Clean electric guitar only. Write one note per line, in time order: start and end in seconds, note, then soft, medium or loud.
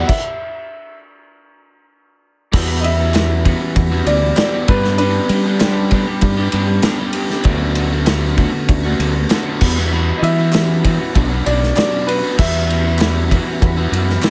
2.52 2.83 E3 loud
2.52 2.84 G3 loud
2.52 2.86 B3 loud
2.52 2.86 F#4 loud
2.84 3.13 E3 medium
2.84 3.02 G3 medium
2.84 3.00 B3 medium
2.84 2.98 F#4 medium
2.99 3.16 G3 medium
2.99 3.16 B3 medium
2.99 3.17 F#4 medium
3.15 3.44 E3 medium
3.15 3.46 G3 loud
3.15 3.48 B3 loud
3.15 3.47 F#4 loud
3.45 3.92 E3 medium
3.45 3.63 G3 medium
3.45 3.62 B3 medium
3.45 3.59 F#4 loud
3.60 3.93 G3 medium
3.60 3.92 B3 medium
3.60 3.89 F#4 medium
3.90 4.05 G3 medium
3.90 4.08 B3 medium
3.90 4.08 F#4 medium
4.06 4.35 E3 medium
4.06 4.24 G3 medium
4.06 4.23 B3 medium
4.06 4.21 F#4 medium
4.22 4.37 G3 medium
4.22 4.39 B3 medium
4.22 4.39 F#4 medium
4.36 4.66 E3 loud
4.36 4.55 G3 medium
4.36 4.54 B3 loud
4.36 4.51 F#4 loud
4.52 4.68 G3 medium
4.52 4.69 B3 medium
4.52 4.67 F#4 medium
4.68 4.98 G2 medium
4.68 4.99 D3 loud
4.68 5.00 G3 medium
4.68 5.01 B3 loud
4.68 5.01 D4 loud
4.68 5.01 G4 loud
4.99 5.60 G2 loud
4.99 5.61 D3 loud
4.99 5.29 G3 loud
4.99 5.31 B3 loud
4.99 5.32 D4 loud
4.99 5.32 G4 loud
5.30 5.48 G3 medium
5.30 5.47 B3 medium
5.30 5.46 D4 medium
5.30 5.44 G4 loud
5.45 5.61 G3 medium
5.45 5.63 B3 medium
5.45 5.64 D4 medium
5.45 5.64 G4 medium
5.61 6.23 G2 medium
5.61 6.23 D3 medium
5.61 5.89 G3 medium
5.61 5.91 B3 loud
5.61 5.92 D4 medium
5.61 5.93 G4 loud
5.91 6.09 G3 medium
5.91 6.09 B3 medium
5.91 6.07 D4 medium
5.91 6.06 G4 medium
6.07 6.40 G3 medium
6.07 6.40 B3 medium
6.07 6.37 D4 medium
6.07 6.36 G4 medium
6.37 6.51 G3 medium
6.37 6.53 B3 medium
6.37 6.53 D4 medium
6.37 6.54 G4 medium
6.52 6.70 G3 medium
6.52 6.69 B3 medium
6.52 6.67 D4 medium
6.52 6.66 G4 medium
6.67 6.83 G3 medium
6.67 6.85 B3 medium
6.67 6.84 D4 medium
6.67 6.85 G4 medium
6.82 7.30 G2 medium
6.82 7.30 D3 loud
6.82 7.01 G3 loud
6.82 7.00 B3 loud
6.82 6.99 D4 medium
6.82 6.97 G4 loud
6.98 7.13 G3 medium
6.98 7.16 B3 medium
6.98 7.16 D4 medium
6.98 7.17 G4 medium
7.15 7.44 G3 medium
7.15 7.48 B3 medium
7.15 7.45 D4 medium
7.15 7.46 G4 medium
7.46 7.76 D3 loud
7.46 7.78 A3 loud
7.46 7.79 B3 loud
7.46 7.80 F#4 loud
7.77 8.05 D3 medium
7.77 7.95 A3 medium
7.77 7.94 B3 medium
7.77 7.91 F#4 medium
7.92 8.08 B3 medium
7.92 8.09 F#4 medium
7.96 8.07 A3 medium
8.06 8.36 D3 medium
8.06 8.38 A3 loud
8.06 8.40 B3 loud
8.06 8.40 F#4 loud
8.37 8.84 D3 medium
8.37 8.55 A3 medium
8.37 8.54 B3 medium
8.37 8.52 F#4 medium
8.53 8.87 A3 medium
8.53 8.86 B3 medium
8.53 8.85 F#4 medium
8.85 9.00 A3 medium
8.85 9.02 B3 medium
8.85 9.03 F#4 medium
9.00 9.29 D3 medium
9.00 9.19 A3 medium
9.00 9.17 B3 medium
9.00 9.15 F#4 loud
9.16 9.30 A3 medium
9.16 9.32 B3 medium
9.16 9.33 F#4 medium
9.31 9.59 D3 loud
9.31 9.48 A3 loud
9.31 9.47 B3 loud
9.31 9.45 F#4 loud
9.45 9.61 A3 medium
9.45 9.64 B3 medium
9.45 9.64 F#4 medium
9.62 9.91 E3 loud
9.62 9.92 G3 medium
9.62 9.94 B3 loud
9.62 9.95 F#4 loud
9.92 10.22 E3 loud
9.92 10.23 G3 loud
9.92 10.24 B3 loud
9.92 10.26 F#4 loud
10.23 10.51 E3 medium
10.23 10.41 G3 medium
10.23 10.39 B3 medium
10.23 10.37 F#4 medium
10.38 10.53 G3 medium
10.38 10.55 B3 medium
10.38 10.56 F#4 medium
10.53 10.81 E3 loud
10.53 10.83 G3 loud
10.53 10.85 B3 loud
10.53 10.85 F#4 loud
10.82 11.12 E3 medium
10.82 11.01 G3 medium
10.82 11.00 B3 medium
10.82 10.97 F#4 medium
10.99 11.14 G3 medium
10.99 11.16 B3 medium
10.99 11.13 F#4 medium
11.14 11.61 B2 loud
11.14 11.43 F#3 loud
11.14 11.32 B3 loud
11.14 11.30 D4 medium
11.14 11.28 F#4 loud
11.29 11.45 B3 medium
11.29 11.45 D4 medium
11.29 11.46 F#4 medium
11.44 11.74 F#3 medium
11.44 11.64 B3 medium
11.44 11.61 D4 medium
11.44 11.59 F#4 loud
11.60 11.76 B3 medium
11.60 11.76 D4 medium
11.60 11.77 F#4 medium
11.75 12.22 B2 medium
11.75 12.06 F#3 medium
11.75 11.94 B3 loud
11.75 11.91 D4 loud
11.75 11.90 F#4 loud
11.91 12.09 B3 medium
11.91 12.09 D4 medium
11.91 12.10 F#4 medium
12.08 12.37 F#3 medium
12.08 12.38 B3 medium
12.08 12.38 D4 medium
12.08 12.38 F#4 medium
12.38 12.68 E3 loud
12.38 12.70 G3 loud
12.38 12.72 B3 medium
12.38 12.72 F#4 medium
12.70 13.00 E3 medium
12.70 12.88 G3 medium
12.70 12.87 B3 medium
12.70 12.84 F#4 loud
12.85 13.02 G3 medium
12.85 13.03 B3 medium
12.85 13.03 F#4 medium
13.01 13.31 E3 medium
13.01 13.33 G3 loud
13.01 13.34 B3 medium
13.01 13.35 F#4 loud
13.32 13.78 E3 medium
13.32 13.50 G3 medium
13.32 13.49 B3 loud
13.32 13.46 F#4 loud
13.47 13.79 G3 medium
13.47 13.78 B3 medium
13.47 13.76 F#4 medium
13.77 13.92 G3 medium
13.77 13.94 B3 medium
13.77 13.94 F#4 medium
13.92 14.21 E3 medium
13.92 14.11 G3 medium
13.92 14.10 B3 medium
13.92 14.07 F#4 medium
14.08 14.25 B3 medium
14.08 14.25 F#4 medium
14.12 14.22 G3 medium
14.22 14.30 E3 loud
14.22 14.30 G3 loud
14.22 14.30 B3 loud
14.22 14.30 F#4 loud